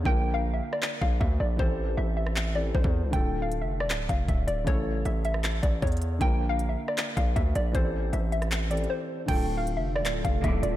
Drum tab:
CC |------------------------------------------------------------------------------------------------|------------------------------------------------------------------------------------------------|------------------------------------------------------------------------------------------------|------------------------------------------------------------------------------------------------|
HH |------------------------------------------------------------------------------------------------|------------------------------------------------------------------------------------------------|x-----------------------x-----------------------x-----------x-----------x-----------x-----------|x-----------------------x-----------x-----------x-----------x-----------x--x--x--x--x-----------|
CP |------------------------------------------------x-----------------------------------------------|------------------------------------------------x-----------------------------------------------|------------------------------------------------x-----------------------------------------------|------------------------------------------------x-----------------------------------------------|
SD |------------------------------------------r-----r-----------------------------------------------|------------------------------------------r-----------------------------------------------------|------------------------------------------r-----r-----------------------------------------------|------------------------------------------r-----r-----------------------------------------------|
BD |o-----------------------------------------------------------o-----------o-----------------------|o-----------------------------------------------------------------------o-----o-----------------|o-----------------------------------------------------------o-----------o-----------------------|o-----------------------------------------------------------o-----------o-----------------------|

CC |------------------------------------------------------------------------------------------------|------------------------------------------------------------------------------------------------|x-----------------------------------------------------------------------------------------------|
HH |x-----------------------x-----------------------x-----------x-----------x-----------x-----------|x-----------------------x-----------x-----x-----x-----------x---x---x---------------------------|x-----------------------x-----------------------x-----------x-----------x-----------x-----------|
CP |------------------------------------------------x-----------------------------------------------|------------------------------------------------x-----------------------------------------------|------------------------------------------------x-----------------------------------------------|
SD |------------------------------------------r-----r-----------------------------------------------|------------------------------------------r-----------------------------------------------------|------------------------------------------r-----r-----------------------------------------------|
BD |o-----------------------------------------------------------o-----------o-----------------------|o-----------------------------------------------------------------------------------------------|o-----------------------------------------------------------o-----------o-----------------------|